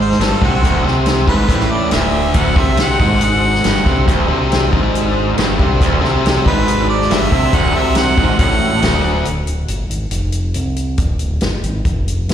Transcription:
Already playing: fingered electric bass G#1, distorted electric guitar G#2
0.01 harmonica C5
0.12 snare
0.19 fingered electric bass G1, distorted electric guitar G2, harmonica A4, snare, closed hi-hat
0.42 fingered electric bass C2, distorted electric guitar C3, harmonica F#4, kick
0.63 fingered electric bass D1, distorted electric guitar D2, kick, closed hi-hat
0.85 fingered electric bass C2, distorted electric guitar C3, snare
1.06 snare, closed hi-hat
1.27 fingered electric bass G#1, distorted electric guitar G#2, harmonica B4, kick
1.48 fingered electric bass A1, distorted electric guitar A2, kick, closed hi-hat
1.60 snare
1.72 harmonica D5
1.91 fingered electric bass D1, distorted electric guitar D2, harmonica E5, snare, closed hi-hat
2.34 fingered electric bass D1, distorted electric guitar D2, string machine A4, harmonica F#5, kick, closed hi-hat
2.38 string machine D4 F#4
2.56 fingered electric bass C2, distorted electric guitar C3, harmonica E5, kick, snare
2.77 harmonica F#5, snare, closed hi-hat
2.99 fingered electric bass G#1, distorted electric guitar G#2, kick
3.21 harmonica F#5, closed hi-hat
3.55 snare
3.64 fingered electric bass G1, distorted electric guitar G2, snare, closed hi-hat
3.86 fingered electric bass C2, distorted electric guitar C3, kick
4.07 fingered electric bass D1, distorted electric guitar D2, kick, closed hi-hat
4.29 fingered electric bass C2, distorted electric guitar C3
4.52 snare, closed hi-hat
4.73 fingered electric bass G#1, distorted electric guitar G#2, kick
4.95 closed hi-hat
5.38 fingered electric bass G1, distorted electric guitar G2, snare, closed hi-hat
5.59 fingered electric bass C2, distorted electric guitar C3, kick
5.78 fingered electric bass D1, distorted electric guitar D2, string machine D4 F#4 A4, kick, closed hi-hat
6.01 fingered electric bass C2, distorted electric guitar C3, snare
6.26 snare, closed hi-hat
6.45 fingered electric bass G#1, distorted electric guitar G#2, harmonica B4, kick
6.68 closed hi-hat
6.89 harmonica D5
7.02 snare
7.11 fingered electric bass G1, distorted electric guitar G2, harmonica E5, snare, closed hi-hat
7.32 fingered electric bass C2, distorted electric guitar C3, kick
7.53 fingered electric bass D1, distorted electric guitar D2, harmonica F#5, kick, closed hi-hat
7.76 fingered electric bass C2, distorted electric guitar C3, harmonica E5
7.95 harmonica F#5, snare, closed hi-hat
8.17 fingered electric bass G#1, distorted electric guitar G#2, kick
8.39 fingered electric bass A1, distorted electric guitar A2, harmonica F#5, kick, closed hi-hat
8.81 fingered electric bass D1, distorted electric guitar D2, snare, closed hi-hat
9.25 fingered electric bass D1, closed hi-hat
9.47 fingered electric bass D1, closed hi-hat
9.68 fingered electric bass G1, closed hi-hat
9.89 fingered electric bass G#1, closed hi-hat
10.11 fingered electric bass F1, closed hi-hat
10.32 closed hi-hat
10.54 fingered electric bass C2, closed hi-hat
10.76 closed hi-hat
10.98 fingered electric bass D1, kick, closed hi-hat
11.19 fingered electric bass D1, closed hi-hat
11.41 fingered electric bass G1, snare, closed hi-hat
11.63 fingered electric bass G#1, closed hi-hat
11.85 fingered electric bass F1, kick, closed hi-hat
12.08 closed hi-hat
12.28 fingered electric bass C2, snare, closed hi-hat

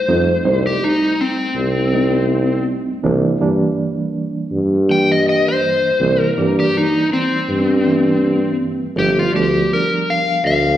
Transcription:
Already playing: electric slide guitar C5
0.08 tuba F2, reed electric piano G3 A3 C4 D#4
0.45 tuba C2, reed electric piano G3 A3 C4 D#4
0.67 electric slide guitar G4
0.84 electric slide guitar D#4
1.21 electric slide guitar C4
1.56 tuba C2
1.92 reed electric piano G3 A3 C4 D#4
3.03 tuba C2, reed electric piano E3 G3 A#3 D4
3.40 tuba G2, reed electric piano E3 G3 A#3 D4
4.52 tuba G2
4.89 reed electric piano E3 G3 A#3 D4, electric slide guitar G5
5.12 electric slide guitar D#5
5.29 electric slide guitar D#5
5.48 electric slide guitar C5
6.00 tuba C2, reed electric piano E3 G3 A#3 C4
6.20 electric slide guitar A#4
6.37 tuba G2, reed electric piano E3 G3 A#3 D5
6.60 electric slide guitar G4
6.77 electric slide guitar D#4
7.13 electric slide guitar C4
7.49 tuba G2
7.85 reed electric piano E3 G3 A#3 E4
8.96 tuba G1, reed electric piano F3 A3 B3 D4, electric slide guitar G4
9.19 electric slide guitar F4
9.33 tuba D2, reed electric piano F3 G3 B3 D4, electric slide guitar G4
9.73 electric slide guitar A#4
10.10 electric slide guitar F5
10.45 tuba D2, electric slide guitar F5

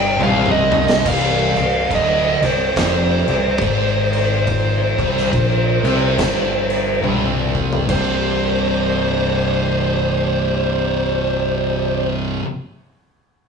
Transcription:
Already playing: fingered electric bass G1, distorted electric guitar G2, tonewheel organ C3 G3 D#4, lead electric guitar G5
0.19 fingered electric bass C1, distorted electric guitar C2, lead electric guitar F5, high tom
0.46 mid tom
0.51 lead electric guitar D#5
0.72 mid tom
0.89 snare
1.05 fingered electric bass C1, distorted electric guitar C2, tonewheel organ C3 D3 G3, lead electric guitar F5, kick, crash
1.56 fingered electric bass C1, distorted electric guitar C2, crash
1.90 fingered electric bass D1, distorted electric guitar D2, kick, crash
1.95 lead electric guitar D#5
2.41 fingered electric bass C1, distorted electric guitar C2, crash
2.45 lead electric guitar C5
2.76 fingered electric bass F1, distorted electric guitar F2, kick, snare, crash
3.27 fingered electric bass C1, distorted electric guitar C2, crash
3.61 fingered electric bass G#1, distorted electric guitar G#2, kick, crash
4.13 crash
4.47 tonewheel organ F3, kick, crash
4.98 fingered electric bass C1, distorted electric guitar C2, kick, crash
5.17 snare
5.33 fingered electric bass A#1, distorted electric guitar A#2, kick, crash
5.83 fingered electric bass C2, distorted electric guitar C3, crash
6.18 fingered electric bass G1, distorted electric guitar G2, kick, snare, crash
6.70 crash
7.02 fingered electric bass C1, distorted electric guitar C2, high tom
7.55 kick
7.73 floor tom
7.88 fingered electric bass C1, distorted electric guitar C2 G2, tonewheel organ C3 G3 D4, lead electric guitar C5, kick, crash
7.92 distorted electric guitar C3

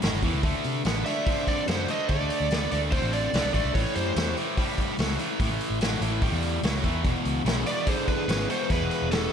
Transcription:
0.02 fingered electric bass G1, distorted electric guitar A2 F#3, snare, open hi-hat
0.13 fingered electric bass G1
0.22 fingered electric bass E2, distorted electric guitar A2 E3, kick, open hi-hat
0.33 fingered electric bass C#2
0.43 fingered electric bass D2, distorted electric guitar D3 A3, kick, open hi-hat
0.64 fingered electric bass C3, open hi-hat
0.85 fingered electric bass A1, distorted electric guitar D3 B3, snare, open hi-hat
1.04 distorted electric guitar D3 A3, lead electric guitar D5, electric slide guitar E5, open hi-hat
1.26 distorted electric guitar D3 C4, kick, open hi-hat
1.46 lead electric guitar A4, electric slide guitar D5, kick, open hi-hat
1.67 fingered electric bass F#2, distorted electric guitar D3 B3, lead electric guitar F#4, electric slide guitar C5, snare, open hi-hat
1.87 distorted electric guitar D3 A3, lead electric guitar C5, electric slide guitar D#5, open hi-hat
2.08 fingered electric bass D3, distorted electric guitar D3 A3, lead electric guitar A4, electric slide guitar D5, kick, open hi-hat
2.20 fingered electric bass D2
2.30 open hi-hat
2.40 fingered electric bass D2
2.51 distorted electric guitar D3 B3, snare, open hi-hat
2.70 fingered electric bass D2, distorted electric guitar D3 A3, lead electric guitar A4, electric slide guitar D5, open hi-hat
2.92 distorted electric guitar D3 C4, lead electric guitar F#4, electric slide guitar C5, kick, open hi-hat
3.02 fingered electric bass A1
3.12 lead electric guitar A4, electric slide guitar D5, open hi-hat
3.33 fingered electric bass C2, distorted electric guitar D3 B3, snare, open hi-hat
3.43 fingered electric bass C2
3.54 fingered electric bass A1, distorted electric guitar D3 A3, lead electric guitar A4, electric slide guitar D5, kick, open hi-hat
3.64 fingered electric bass C2
3.73 fingered electric bass A1, distorted electric guitar A2 E3, lead electric guitar A4, electric slide guitar C#5, kick, open hi-hat
3.95 fingered electric bass F#2, lead electric guitar G4, electric slide guitar C5, open hi-hat
4.16 fingered electric bass E2, distorted electric guitar A2 F#3, snare, open hi-hat
4.37 distorted electric guitar A2 E3, open hi-hat
4.57 distorted electric guitar A2 G3, kick, open hi-hat
4.78 kick, open hi-hat
4.98 fingered electric bass C#2, distorted electric guitar A2 F#3, snare, open hi-hat
5.19 distorted electric guitar A2 E3, open hi-hat
5.40 fingered electric bass A2, distorted electric guitar A2 E3, kick, open hi-hat
5.49 fingered electric bass A1
5.61 open hi-hat
5.70 fingered electric bass A1
5.81 distorted electric guitar A2 F#3, snare, open hi-hat
6.01 fingered electric bass A1, distorted electric guitar A2 E3, open hi-hat
6.22 distorted electric guitar A2 G3, kick, open hi-hat
6.32 fingered electric bass E2
6.42 open hi-hat
6.63 fingered electric bass C#2, distorted electric guitar A2 F#3, snare, open hi-hat
6.84 fingered electric bass E2, distorted electric guitar A2 E3, kick, open hi-hat
7.04 fingered electric bass E1, distorted electric guitar E2 B2, kick, open hi-hat
7.25 fingered electric bass C#2, open hi-hat
7.45 fingered electric bass B1, distorted electric guitar E2 C#3, snare, open hi-hat
7.66 distorted electric guitar E2 B2, lead electric guitar B4, electric slide guitar D5, open hi-hat
7.86 distorted electric guitar E2 D3, lead electric guitar G#4, electric slide guitar C5, kick, open hi-hat
8.08 lead electric guitar G#4, electric slide guitar B4, kick, open hi-hat
8.28 fingered electric bass G#1, distorted electric guitar E2 C#3, snare, open hi-hat
8.49 distorted electric guitar E2 B2, lead electric guitar A4, electric slide guitar C5, open hi-hat
8.70 distorted electric guitar E2 B2, fingered electric bass E2, lead electric guitar G#4, electric slide guitar B4, kick, open hi-hat
8.80 fingered electric bass E1
8.91 open hi-hat
9.02 fingered electric bass E1
9.11 distorted electric guitar E2 C#3, lead electric guitar G4, electric slide guitar A4, snare, open hi-hat

